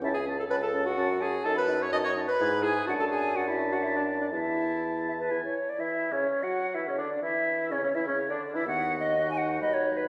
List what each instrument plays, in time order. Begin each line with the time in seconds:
0.01 bassoon C#2, french horn C#4, clarinet E4, flute E5, oboe A5
0.14 clarinet G#4, flute G#5
0.26 french horn C#4, oboe A5
0.37 clarinet A4, flute A5
0.48 bassoon C#2, french horn C#4, clarinet B4, oboe A5, flute B5
0.61 clarinet A4, flute A5
0.73 french horn C#4, oboe A5
0.85 clarinet F#4, flute F#5
0.97 bassoon F#2, french horn C#4, oboe A5
1.20 french horn C#4, clarinet G#4, flute G#5, oboe A5
1.44 bassoon F#2, french horn D#4, clarinet A4, oboe A5, flute A5
1.56 clarinet B4, flute B5
1.68 french horn D#4, oboe A5
1.81 clarinet C#5, flute C#6
1.91 bassoon F#2, french horn D#4, clarinet D#5, oboe A5, flute D#6
2.04 clarinet C#5, flute C#6
2.16 french horn D#4, oboe A5
2.28 clarinet B4, flute B5
2.40 bassoon G#2, french horn E4, oboe G#5
2.63 french horn E4, clarinet G#4, oboe G#5, flute G#5
2.86 bassoon F#2, french horn D4, clarinet F#4, flute F#5, oboe A5
3.00 clarinet A4, flute A5
3.11 clarinet G#4, flute G#5
3.35 french horn D4, clarinet F#4, flute F#5, oboe A5
3.48 clarinet E4, flute E5
3.72 clarinet F#4, flute F#5
3.83 clarinet E4, flute E5
3.96 clarinet D4, flute D5
4.21 clarinet D4, flute D5
4.32 bassoon E2, clarinet E4, french horn E4, flute E5, oboe A5
5.08 flute E5
5.20 flute B4
5.31 bassoon E2, french horn E4, oboe G#5
5.45 flute C#5
5.69 flute D5
5.78 bassoon E3, oboe E4, french horn E4, clarinet E4, flute E5
6.12 bassoon C#3, french horn C#4, oboe C#4, clarinet C#4, flute C#5
6.43 bassoon F#3, oboe F#4, french horn F#4, clarinet F#4, flute F#5
6.74 bassoon E3, oboe E4, french horn E4, clarinet E4, flute E5
6.87 bassoon C#3, oboe C#4, clarinet C#4, french horn C#4, flute C#5
6.98 bassoon D3, oboe D4, clarinet D4, french horn D4, flute D5
7.22 bassoon E3, oboe E4, clarinet E4, french horn E4, flute E5
7.70 bassoon C#3, oboe C#4, french horn C#4, clarinet C#4, flute C#5
7.83 bassoon C#3, oboe C#4, french horn C#4, clarinet C#4, flute C#5
7.95 bassoon E3, oboe E4, clarinet E4, french horn E4, flute E5
8.07 bassoon C#3, oboe C#4, clarinet C#4, french horn C#4, flute C#5
8.30 bassoon D3, oboe D4, french horn D4, clarinet D4, flute D5
8.54 bassoon E3, oboe E4, clarinet E4, french horn E4, flute E5
8.65 bassoon D#2, french horn D#3, clarinet B3, oboe F#4, flute F#5
9.00 flute D#5
9.14 clarinet D#4
9.31 flute G#5
9.38 flute F#5
9.61 french horn F#3, oboe B4, flute D#5
9.73 flute C#5
9.97 flute B4